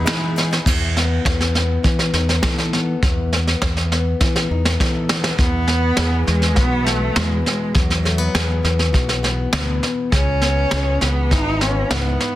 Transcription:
0.00 0.61 E2 medium
0.00 0.61 E3 medium
0.00 0.04 G#3 medium
0.00 0.05 E4 medium
0.00 0.32 E4 medium
0.00 0.06 B4 medium
0.00 0.68 D#5 medium
0.04 0.36 E3 medium
0.04 0.58 E3 medium
0.04 0.56 G#3 medium
0.04 0.35 G#3 medium
0.04 0.57 D#4 medium
0.04 0.36 D#4 medium
0.04 0.57 E4 medium
0.04 0.37 G#4 medium
0.04 0.57 B4 medium
0.04 snare loud
0.36 0.51 G#3 medium
0.36 0.51 B3 medium
0.36 0.51 D#4 medium
0.36 0.50 G#4 medium
0.36 snare soft
0.51 0.67 B3 soft
0.51 0.66 D#4 soft
0.51 0.66 G#4 soft
0.51 snare soft
0.65 3.02 E2 medium
0.65 1.18 E2 medium
0.65 kick loud
0.65 snare soft
0.65 crash medium
0.97 1.54 B3 soft
0.97 snare soft
1.25 1.77 E2 medium
1.25 1.83 E3 medium
1.25 kick medium
1.25 snare medium
1.41 snare soft
1.54 2.74 B3 soft
1.54 snare soft
1.83 3.61 E3 medium
1.83 2.10 E3 medium
1.83 kick medium
1.83 snare soft
1.99 snare soft
2.13 2.39 E2 medium
2.13 2.99 D#4 medium
2.13 snare soft
2.29 snare soft
2.43 2.95 E3 medium
2.43 2.99 A4 soft
2.43 kick medium
2.43 snare loud
2.58 snare soft
2.73 3.34 B3 soft
2.73 snare soft
3.03 5.37 E2 medium
3.03 3.54 E2 medium
3.03 kick loud
3.03 snare soft
3.33 3.91 B3 soft
3.33 snare soft
3.47 snare soft
3.62 4.13 E2 medium
3.62 kick medium
3.62 snare medium
3.77 snare soft
3.92 5.08 B3 soft
3.92 snare soft
4.20 6.25 E3 soft
4.20 4.47 E3 medium
4.20 kick medium
4.20 snare soft
4.36 snare soft
4.50 4.76 E2 medium
4.50 5.36 D#4 soft
4.65 snare medium
4.80 5.32 E3 medium
4.80 5.36 A4 soft
4.80 kick medium
4.80 snare medium
5.09 5.36 B3 medium
5.09 snare medium
5.24 snare medium
5.38 7.74 E2 medium
5.38 5.91 E2 medium
5.38 6.23 B3 medium
5.38 kick medium
5.38 snare soft
5.68 6.86 B3 soft
5.68 snare soft
5.97 6.24 E2 medium
5.97 8.07 G#4 medium
5.97 snare medium
6.27 6.57 E2 medium
6.27 8.63 E3 medium
6.27 6.57 G#3 medium
6.27 snare soft
6.42 snare soft
6.55 7.09 B1 medium
6.55 6.86 B3 medium
6.55 7.72 F#4 soft
6.55 kick medium
6.55 snare soft
6.85 7.18 A3 medium
6.85 8.03 B3 medium
6.85 snare soft
7.15 7.42 E2 medium
7.15 7.75 B2 soft
7.15 7.44 G#3 medium
7.15 snare medium
7.45 7.76 G#3 medium
7.45 snare soft
7.75 10.12 E2 medium
7.75 8.27 E2 medium
7.75 8.64 F#3 medium
7.75 kick medium
7.75 snare soft
7.90 snare soft
8.04 8.18 A3 soft
8.04 snare soft
8.18 9.22 B3 soft
8.35 8.61 E2 medium
8.35 10.73 G#4 medium
8.35 snare medium
8.63 8.94 E2 medium
8.63 11.00 E3 soft
8.63 snare soft
8.79 snare soft
8.93 9.46 B1 medium
8.93 10.08 F#4 medium
8.93 kick medium
8.93 snare soft
9.09 snare soft
9.23 10.16 B3 medium
9.23 snare soft
9.53 9.79 D2 medium
9.53 10.13 B2 medium
9.53 snare loud
9.83 snare soft
10.12 10.64 C#2 medium
10.12 11.02 C#3 medium
10.12 11.04 C#4 medium
10.12 kick medium
10.12 snare soft
10.42 11.61 B3 soft
10.42 snare soft
10.71 10.98 C#2 medium
10.71 12.35 G#4 medium
10.71 snare medium
11.01 11.33 C#2 medium
11.01 12.35 E3 soft
11.01 11.33 B3 medium
11.01 snare soft
11.31 11.83 G#1 loud
11.31 11.62 D#4 medium
11.31 12.35 E4 medium
11.31 kick medium
11.31 snare soft
11.60 12.35 B3 medium
11.60 11.93 C#4 medium
11.60 snare soft
11.90 12.16 C#2 medium
11.90 12.35 G#2 soft
11.90 12.35 B3 medium
11.90 snare loud
12.20 snare soft

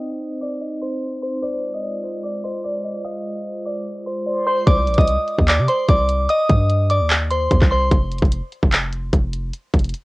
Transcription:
0.00 1.39 C4 medium
0.00 1.39 D#4 medium
0.00 1.39 C5 medium
0.00 0.38 D#5 medium
0.00 0.57 G5 loud
0.00 0.38 D#6 loud
0.41 0.58 D5 medium
0.41 0.57 D6 medium
0.61 1.39 D#5 medium
0.82 1.20 C5 medium
0.82 1.20 C6 medium
1.22 1.39 C5 medium
1.22 1.38 C6 medium
1.43 4.64 G#3 medium
1.43 4.64 F4 medium
1.43 4.64 C5 medium
1.43 1.81 C5 loud
1.43 1.72 D5 medium
1.43 1.72 D6 loud
1.74 2.21 D#5 medium
1.74 2.21 D#6 medium
1.83 2.02 D5 medium
2.03 2.41 C5 medium
2.23 2.40 D5 medium
2.23 2.40 D6 medium
2.44 2.60 C5 medium
2.44 2.63 D#5 medium
2.44 2.60 C6 medium
2.64 2.84 D5 medium
2.64 3.03 D5 medium
2.64 3.02 D6 medium
2.85 3.04 D#5 medium
3.04 3.62 D#5 medium
3.04 4.22 F5 loud
3.04 3.62 D#6 loud
3.65 3.82 D5 medium
3.65 3.81 D6 medium
4.06 4.45 C5 medium
4.06 4.44 C6 medium
4.26 4.46 D5 medium
4.47 4.66 C5 medium
4.47 4.63 C5 medium
4.47 4.63 C6 medium
4.67 4.89 C2 loud
4.67 4.96 D5 medium
4.67 4.96 D6 medium
4.67 kick loud
4.67 closed hi-hat medium
4.87 4.97 A#1 loud
4.87 closed hi-hat medium
4.94 5.17 C2 loud
4.94 5.45 D#6 medium
4.94 kick loud
4.94 closed hi-hat medium
4.98 5.45 D#5 medium
4.98 closed hi-hat medium
5.07 closed hi-hat medium
5.28 closed hi-hat medium
5.38 5.60 D#2 loud
5.38 kick medium
5.48 5.65 D5 medium
5.48 5.64 D6 medium
5.48 clap loud
5.48 closed hi-hat medium
5.59 5.68 C3 loud
5.68 5.85 C5 medium
5.68 5.84 C6 medium
5.68 closed hi-hat medium
5.88 6.27 C2 loud
5.88 6.27 D5 medium
5.88 6.27 D6 medium
5.88 kick loud
5.88 closed hi-hat medium
6.09 closed hi-hat medium
6.29 6.87 D#5 medium
6.29 6.86 D#6 loud
6.29 closed hi-hat medium
6.49 7.02 G2 loud
6.49 kick medium
6.49 closed hi-hat medium
6.70 closed hi-hat medium
6.90 7.06 D5 medium
6.90 7.06 D6 medium
6.90 closed hi-hat medium
7.01 7.48 D#2 loud
7.10 clap loud
7.10 closed hi-hat medium
7.30 7.69 C5 medium
7.30 7.69 C6 medium
7.30 closed hi-hat medium
7.51 7.61 D#2 loud
7.51 kick loud
7.51 closed hi-hat medium
7.61 7.90 C2 loud
7.61 kick loud
7.61 clap medium
7.71 7.87 C5 medium
7.71 7.87 C6 medium
7.91 8.21 F1 loud
7.91 kick loud
7.91 closed hi-hat medium
8.12 closed hi-hat medium
8.18 8.42 F1 loud
8.18 kick loud
8.18 closed hi-hat medium
8.25 closed hi-hat medium
8.32 closed hi-hat medium
8.52 closed hi-hat medium
8.63 9.11 F1 loud
8.63 kick medium
8.72 clap loud
8.72 closed hi-hat medium
8.93 closed hi-hat medium
9.13 9.52 F1 loud
9.13 kick loud
9.13 closed hi-hat medium
9.33 closed hi-hat medium
9.53 closed hi-hat medium
9.74 9.93 F1 loud
9.74 kick medium
9.74 closed hi-hat medium
9.79 closed hi-hat medium
9.84 closed hi-hat medium
9.89 closed hi-hat medium
9.94 closed hi-hat medium

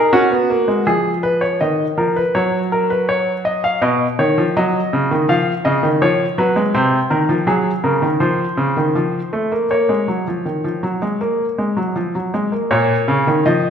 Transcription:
0.00 0.10 D#4 medium
0.00 0.12 A#4 medium
0.13 0.31 C#4 medium
0.13 0.85 F#4 medium
0.31 0.49 B3 medium
0.50 0.68 A#3 medium
0.68 0.86 G#3 medium
0.87 1.59 F3 medium
0.87 1.10 G#4 medium
1.23 1.41 B4 medium
1.41 1.60 C#5 medium
1.61 1.84 D#3 medium
1.61 1.84 D#5 medium
1.97 2.21 F3 medium
1.97 2.16 A#4 medium
2.16 2.34 B4 medium
2.35 3.78 F#3 medium
2.35 2.58 C#5 medium
2.72 2.90 A#4 medium
2.90 3.08 B4 medium
3.09 3.31 C#5 medium
3.45 3.63 D#5 medium
3.64 3.81 F5 medium
3.82 4.05 B2 medium
3.82 4.05 D#5 medium
4.19 4.37 D#3 medium
4.19 4.42 C#5 medium
4.38 4.55 F3 medium
4.57 4.79 F#3 medium
4.57 5.27 D#5 medium
4.93 5.10 C#3 medium
5.11 5.28 D#3 medium
5.29 5.51 F3 medium
5.29 5.51 F5 medium
5.65 5.83 C#3 medium
5.65 5.88 D#5 medium
5.83 6.01 D#3 medium
6.02 6.24 F3 medium
6.02 6.25 C#5 medium
6.38 6.56 F#3 medium
6.38 6.61 B4 medium
6.56 6.74 G#3 medium
6.75 6.97 C3 medium
6.75 6.97 C5 medium
7.10 7.29 D#3 medium
7.10 7.33 A#4 medium
7.29 7.47 F3 medium
7.47 7.70 F#3 medium
7.47 7.70 G#4 medium
7.84 8.02 C#3 medium
7.84 8.07 A#4 medium
8.02 8.20 D#3 medium
8.20 8.44 F3 medium
8.20 9.66 C5 medium
8.57 8.76 C#3 medium
8.77 8.95 D#3 medium
8.95 9.18 F3 medium
9.33 9.51 A3 medium
9.52 9.69 A#3 medium
9.71 9.89 A#3 medium
9.71 12.30 C#5 medium
9.89 10.07 G#3 medium
10.08 10.26 F#3 medium
10.28 10.45 F3 soft
10.45 10.63 D#3 soft
10.64 10.82 F3 medium
10.83 11.01 F#3 medium
11.02 11.20 G#3 medium
11.21 11.44 A#3 medium
11.58 11.77 G#3 medium
11.77 11.95 F#3 medium
11.96 12.14 F3 medium
12.15 12.33 F#3 soft
12.34 12.52 G#3 medium
12.52 12.70 A#3 medium
12.71 12.94 A#2 medium
12.71 13.43 C#5 medium
13.08 13.26 C#3 medium
13.27 13.45 D#3 medium
13.46 13.69 F3 medium
13.46 13.69 D#5 medium

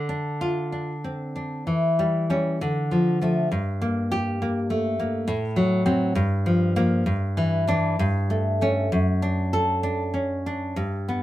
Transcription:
0.00 1.63 D3 soft
0.09 0.71 D4 soft
0.41 0.91 F4 medium
0.72 1.34 D4 soft
1.04 1.67 C4 soft
1.36 1.67 D4 soft
1.67 2.58 E3 soft
1.99 2.29 G3 soft
2.30 2.57 G3 soft
2.30 2.58 C#4 medium
2.61 3.48 D3 medium
2.91 3.20 F3 soft
3.21 3.48 F3 soft
3.21 3.48 A3 medium
3.51 5.24 G2 medium
3.82 4.41 A#3 medium
4.12 4.59 G4 medium
4.42 4.98 A#3 medium
4.70 5.28 A3 soft
4.99 5.28 A#3 soft
5.28 6.13 A2 medium
5.56 5.85 F#3 medium
5.86 6.12 F#3 soft
5.86 6.12 C4 medium
6.15 7.03 G2 medium
6.46 6.75 F3 medium
6.76 7.03 F3 soft
6.76 7.03 A#3 medium
7.06 7.95 G2 medium
7.37 7.66 E3 medium
7.67 7.95 E3 medium
7.67 7.96 D4 medium
7.99 8.89 G2 medium
8.30 8.60 A3 medium
8.61 8.88 A3 soft
8.61 8.89 C#4 medium
8.92 10.73 F#2 medium
9.22 9.82 D4 medium
9.53 10.02 A4 medium
9.83 10.45 D4 medium
10.14 10.76 C#4 soft
10.46 10.77 D4 soft
10.76 11.23 G2 medium
11.09 11.23 B3 soft

